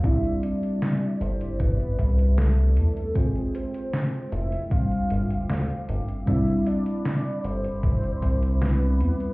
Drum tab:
HH |xxxxxxxxxxxxxxxx|xxxxxxxxxxxxxxxx|xxxxxxxxxxxxxxxx|
SD |----o-------o---|----o-------o---|----o-------o---|
BD |o-------o-o-----|o-------o-------|o-------o-o-----|